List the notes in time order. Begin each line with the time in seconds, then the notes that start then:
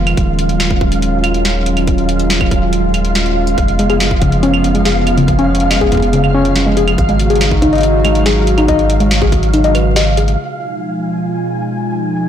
Already playing: F1 D#3 F3 G#3 B3 F4 F5
0.07 closed hi-hat, claves
0.17 D#1 F#3 C#4, kick, closed hi-hat
0.39 closed hi-hat
0.49 closed hi-hat
0.60 snare, closed hi-hat, claves
0.71 kick
0.81 kick
0.92 closed hi-hat
1.02 closed hi-hat
1.24 closed hi-hat, claves
1.34 closed hi-hat
1.45 snare, closed hi-hat
1.66 closed hi-hat
1.77 closed hi-hat, claves
1.87 kick, closed hi-hat
1.98 closed hi-hat
2.09 closed hi-hat
2.19 closed hi-hat
2.30 snare, closed hi-hat
2.41 kick, claves
2.51 kick, closed hi-hat
2.73 closed hi-hat
2.94 closed hi-hat, claves
3.05 closed hi-hat
3.15 snare, closed hi-hat
3.26 closed hi-hat
3.47 closed hi-hat
3.58 F1 C#3 F3 B3, kick, closed hi-hat
3.68 closed hi-hat
3.79 G#3, closed hi-hat
3.90 G#4, closed hi-hat, claves
4.00 snare, closed hi-hat
4.11 kick
4.22 C#3, kick, closed hi-hat
4.32 closed hi-hat
4.43 C#4, closed hi-hat
4.54 claves
4.64 closed hi-hat
4.75 G#3, closed hi-hat
4.85 G#4, snare, closed hi-hat
5.07 closed hi-hat, claves
5.17 C#3, closed hi-hat
5.28 kick, closed hi-hat
5.39 C#4, closed hi-hat
5.55 closed hi-hat
5.60 closed hi-hat
5.71 G#3, snare, closed hi-hat, claves
5.81 G#4, kick
5.92 kick, closed hi-hat
5.95 kick
5.97 kick
6.00 kick, closed hi-hat
6.13 C#3, closed hi-hat
6.24 claves
6.34 C#4
6.45 closed hi-hat
6.56 snare, closed hi-hat
6.66 G#3
6.77 G#4, closed hi-hat
6.88 closed hi-hat, claves
6.98 G#1 F#3 G#3 D#4 F#4, kick, closed hi-hat
7.09 G#3, closed hi-hat
7.20 closed hi-hat
7.30 G#4, closed hi-hat
7.36 closed hi-hat
7.41 snare, closed hi-hat, claves
7.46 closed hi-hat
7.51 kick
7.62 D#4, kick, closed hi-hat
7.73 D#5, closed hi-hat
7.75 closed hi-hat
7.78 closed hi-hat
7.81 closed hi-hat
7.83 closed hi-hat
8.05 G#3, closed hi-hat, claves
8.15 closed hi-hat
8.26 G#4, snare, closed hi-hat
8.47 closed hi-hat
8.58 D#4, closed hi-hat, claves
8.68 D#5, kick, closed hi-hat
8.79 closed hi-hat
8.90 closed hi-hat
9.00 G#3, closed hi-hat
9.11 snare, closed hi-hat
9.22 G#4, kick
9.32 kick, closed hi-hat
9.43 closed hi-hat
9.54 D#4, closed hi-hat
9.64 D#5, closed hi-hat
9.75 B4, closed hi-hat, claves
9.96 D#5, snare, closed hi-hat
10.17 G#4, closed hi-hat
10.28 closed hi-hat
10.39 B2 F3 G#3 D#4 F4 G#5